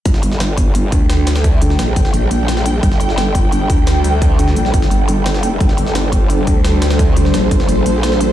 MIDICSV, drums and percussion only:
0, 0, Header, 1, 2, 480
1, 0, Start_track
1, 0, Key_signature, -2, "minor"
1, 0, Tempo, 346821
1, 78, Time_signature, 4, 2, 24, 8
1, 11520, End_track
2, 0, Start_track
2, 0, Title_t, "Drums"
2, 76, Note_on_c, 9, 42, 83
2, 77, Note_off_c, 9, 42, 0
2, 77, Note_on_c, 9, 36, 115
2, 77, Note_on_c, 9, 42, 85
2, 196, Note_on_c, 9, 38, 48
2, 215, Note_off_c, 9, 36, 0
2, 215, Note_off_c, 9, 42, 0
2, 316, Note_on_c, 9, 42, 68
2, 335, Note_off_c, 9, 38, 0
2, 437, Note_on_c, 9, 38, 40
2, 455, Note_off_c, 9, 42, 0
2, 556, Note_on_c, 9, 42, 79
2, 557, Note_off_c, 9, 38, 0
2, 557, Note_off_c, 9, 42, 0
2, 557, Note_on_c, 9, 38, 109
2, 557, Note_on_c, 9, 42, 82
2, 695, Note_off_c, 9, 38, 0
2, 695, Note_off_c, 9, 42, 0
2, 796, Note_on_c, 9, 42, 93
2, 797, Note_off_c, 9, 42, 0
2, 797, Note_on_c, 9, 36, 59
2, 797, Note_on_c, 9, 42, 68
2, 935, Note_off_c, 9, 36, 0
2, 935, Note_off_c, 9, 42, 0
2, 1036, Note_on_c, 9, 42, 84
2, 1175, Note_off_c, 9, 42, 0
2, 1276, Note_on_c, 9, 42, 94
2, 1277, Note_off_c, 9, 42, 0
2, 1277, Note_on_c, 9, 36, 102
2, 1277, Note_on_c, 9, 42, 66
2, 1415, Note_off_c, 9, 36, 0
2, 1415, Note_off_c, 9, 42, 0
2, 1516, Note_on_c, 9, 42, 81
2, 1517, Note_on_c, 9, 38, 114
2, 1517, Note_on_c, 9, 46, 77
2, 1654, Note_off_c, 9, 42, 0
2, 1655, Note_off_c, 9, 38, 0
2, 1655, Note_off_c, 9, 46, 0
2, 1756, Note_on_c, 9, 42, 96
2, 1757, Note_off_c, 9, 42, 0
2, 1757, Note_on_c, 9, 38, 101
2, 1757, Note_on_c, 9, 42, 80
2, 1877, Note_off_c, 9, 38, 0
2, 1877, Note_off_c, 9, 42, 0
2, 1877, Note_on_c, 9, 38, 99
2, 1877, Note_on_c, 9, 42, 76
2, 1996, Note_off_c, 9, 42, 0
2, 1996, Note_on_c, 9, 42, 81
2, 1997, Note_off_c, 9, 42, 0
2, 1997, Note_on_c, 9, 36, 117
2, 1997, Note_on_c, 9, 42, 83
2, 2015, Note_off_c, 9, 38, 0
2, 2135, Note_off_c, 9, 36, 0
2, 2135, Note_off_c, 9, 42, 0
2, 2236, Note_on_c, 9, 42, 88
2, 2238, Note_off_c, 9, 42, 0
2, 2238, Note_on_c, 9, 42, 68
2, 2358, Note_on_c, 9, 38, 39
2, 2376, Note_off_c, 9, 42, 0
2, 2476, Note_on_c, 9, 42, 77
2, 2477, Note_off_c, 9, 38, 0
2, 2477, Note_off_c, 9, 42, 0
2, 2477, Note_on_c, 9, 38, 109
2, 2477, Note_on_c, 9, 42, 84
2, 2615, Note_off_c, 9, 38, 0
2, 2615, Note_off_c, 9, 42, 0
2, 2716, Note_on_c, 9, 42, 90
2, 2717, Note_off_c, 9, 42, 0
2, 2717, Note_on_c, 9, 36, 108
2, 2717, Note_on_c, 9, 42, 66
2, 2837, Note_on_c, 9, 38, 54
2, 2855, Note_off_c, 9, 36, 0
2, 2856, Note_off_c, 9, 42, 0
2, 2956, Note_on_c, 9, 42, 77
2, 2957, Note_off_c, 9, 42, 0
2, 2957, Note_on_c, 9, 42, 86
2, 2975, Note_off_c, 9, 38, 0
2, 3095, Note_off_c, 9, 42, 0
2, 3197, Note_on_c, 9, 42, 65
2, 3335, Note_off_c, 9, 42, 0
2, 3436, Note_on_c, 9, 38, 116
2, 3436, Note_on_c, 9, 42, 87
2, 3437, Note_off_c, 9, 42, 0
2, 3437, Note_on_c, 9, 42, 79
2, 3557, Note_off_c, 9, 38, 0
2, 3557, Note_on_c, 9, 38, 56
2, 3576, Note_off_c, 9, 42, 0
2, 3677, Note_on_c, 9, 42, 92
2, 3695, Note_off_c, 9, 38, 0
2, 3816, Note_off_c, 9, 42, 0
2, 3917, Note_on_c, 9, 36, 122
2, 3917, Note_on_c, 9, 42, 78
2, 4037, Note_on_c, 9, 38, 48
2, 4056, Note_off_c, 9, 36, 0
2, 4056, Note_off_c, 9, 42, 0
2, 4157, Note_on_c, 9, 42, 84
2, 4175, Note_off_c, 9, 38, 0
2, 4277, Note_on_c, 9, 38, 41
2, 4295, Note_off_c, 9, 42, 0
2, 4397, Note_off_c, 9, 38, 0
2, 4397, Note_on_c, 9, 38, 110
2, 4397, Note_on_c, 9, 42, 73
2, 4536, Note_off_c, 9, 38, 0
2, 4536, Note_off_c, 9, 42, 0
2, 4637, Note_on_c, 9, 36, 63
2, 4637, Note_on_c, 9, 42, 69
2, 4775, Note_off_c, 9, 36, 0
2, 4775, Note_off_c, 9, 42, 0
2, 4877, Note_on_c, 9, 42, 75
2, 5016, Note_off_c, 9, 42, 0
2, 5117, Note_on_c, 9, 36, 107
2, 5117, Note_on_c, 9, 42, 88
2, 5255, Note_off_c, 9, 36, 0
2, 5255, Note_off_c, 9, 42, 0
2, 5356, Note_on_c, 9, 38, 112
2, 5356, Note_on_c, 9, 46, 78
2, 5357, Note_on_c, 9, 42, 75
2, 5495, Note_off_c, 9, 38, 0
2, 5495, Note_off_c, 9, 46, 0
2, 5496, Note_off_c, 9, 42, 0
2, 5597, Note_on_c, 9, 42, 91
2, 5735, Note_off_c, 9, 42, 0
2, 5837, Note_on_c, 9, 36, 118
2, 5837, Note_on_c, 9, 42, 85
2, 5975, Note_off_c, 9, 36, 0
2, 5975, Note_off_c, 9, 42, 0
2, 6076, Note_on_c, 9, 42, 84
2, 6077, Note_off_c, 9, 42, 0
2, 6077, Note_on_c, 9, 42, 80
2, 6196, Note_on_c, 9, 38, 43
2, 6215, Note_off_c, 9, 42, 0
2, 6316, Note_on_c, 9, 42, 73
2, 6335, Note_off_c, 9, 38, 0
2, 6436, Note_on_c, 9, 38, 38
2, 6455, Note_off_c, 9, 42, 0
2, 6556, Note_on_c, 9, 42, 85
2, 6557, Note_off_c, 9, 42, 0
2, 6557, Note_on_c, 9, 36, 106
2, 6557, Note_on_c, 9, 42, 67
2, 6575, Note_off_c, 9, 38, 0
2, 6677, Note_on_c, 9, 38, 56
2, 6695, Note_off_c, 9, 36, 0
2, 6695, Note_off_c, 9, 42, 0
2, 6797, Note_on_c, 9, 42, 87
2, 6816, Note_off_c, 9, 38, 0
2, 6935, Note_off_c, 9, 42, 0
2, 7037, Note_on_c, 9, 42, 64
2, 7176, Note_off_c, 9, 42, 0
2, 7277, Note_on_c, 9, 42, 74
2, 7278, Note_off_c, 9, 42, 0
2, 7278, Note_on_c, 9, 38, 113
2, 7278, Note_on_c, 9, 42, 85
2, 7397, Note_off_c, 9, 38, 0
2, 7397, Note_on_c, 9, 38, 56
2, 7416, Note_off_c, 9, 42, 0
2, 7517, Note_on_c, 9, 42, 69
2, 7536, Note_off_c, 9, 38, 0
2, 7656, Note_off_c, 9, 42, 0
2, 7757, Note_on_c, 9, 36, 112
2, 7757, Note_on_c, 9, 42, 85
2, 7758, Note_off_c, 9, 42, 0
2, 7758, Note_on_c, 9, 42, 75
2, 7877, Note_on_c, 9, 38, 46
2, 7895, Note_off_c, 9, 36, 0
2, 7896, Note_off_c, 9, 42, 0
2, 7997, Note_on_c, 9, 42, 85
2, 8016, Note_off_c, 9, 38, 0
2, 8117, Note_on_c, 9, 38, 41
2, 8136, Note_off_c, 9, 42, 0
2, 8237, Note_off_c, 9, 38, 0
2, 8237, Note_on_c, 9, 38, 111
2, 8237, Note_on_c, 9, 42, 85
2, 8375, Note_off_c, 9, 38, 0
2, 8375, Note_off_c, 9, 42, 0
2, 8477, Note_on_c, 9, 36, 61
2, 8477, Note_on_c, 9, 42, 69
2, 8616, Note_off_c, 9, 36, 0
2, 8616, Note_off_c, 9, 42, 0
2, 8717, Note_on_c, 9, 42, 88
2, 8855, Note_off_c, 9, 42, 0
2, 8956, Note_on_c, 9, 42, 87
2, 8957, Note_off_c, 9, 42, 0
2, 8957, Note_on_c, 9, 36, 103
2, 8957, Note_on_c, 9, 42, 65
2, 9096, Note_off_c, 9, 36, 0
2, 9096, Note_off_c, 9, 42, 0
2, 9197, Note_on_c, 9, 38, 115
2, 9197, Note_on_c, 9, 42, 75
2, 9197, Note_on_c, 9, 46, 78
2, 9335, Note_off_c, 9, 38, 0
2, 9335, Note_off_c, 9, 42, 0
2, 9335, Note_off_c, 9, 46, 0
2, 9437, Note_on_c, 9, 38, 105
2, 9437, Note_on_c, 9, 42, 80
2, 9557, Note_off_c, 9, 38, 0
2, 9557, Note_off_c, 9, 42, 0
2, 9557, Note_on_c, 9, 38, 101
2, 9557, Note_on_c, 9, 42, 76
2, 9677, Note_off_c, 9, 42, 0
2, 9677, Note_on_c, 9, 36, 109
2, 9677, Note_on_c, 9, 42, 79
2, 9695, Note_off_c, 9, 38, 0
2, 9816, Note_off_c, 9, 36, 0
2, 9816, Note_off_c, 9, 42, 0
2, 9917, Note_on_c, 9, 42, 68
2, 10037, Note_on_c, 9, 38, 38
2, 10056, Note_off_c, 9, 42, 0
2, 10157, Note_off_c, 9, 38, 0
2, 10157, Note_on_c, 9, 38, 112
2, 10157, Note_on_c, 9, 42, 84
2, 10296, Note_off_c, 9, 38, 0
2, 10296, Note_off_c, 9, 42, 0
2, 10397, Note_on_c, 9, 36, 103
2, 10397, Note_on_c, 9, 42, 90
2, 10517, Note_on_c, 9, 38, 55
2, 10536, Note_off_c, 9, 36, 0
2, 10536, Note_off_c, 9, 42, 0
2, 10637, Note_on_c, 9, 42, 86
2, 10656, Note_off_c, 9, 38, 0
2, 10776, Note_off_c, 9, 42, 0
2, 10877, Note_on_c, 9, 42, 66
2, 11016, Note_off_c, 9, 42, 0
2, 11117, Note_on_c, 9, 38, 113
2, 11117, Note_on_c, 9, 42, 88
2, 11238, Note_off_c, 9, 38, 0
2, 11238, Note_on_c, 9, 38, 57
2, 11255, Note_off_c, 9, 42, 0
2, 11357, Note_on_c, 9, 42, 69
2, 11376, Note_off_c, 9, 38, 0
2, 11496, Note_off_c, 9, 42, 0
2, 11520, End_track
0, 0, End_of_file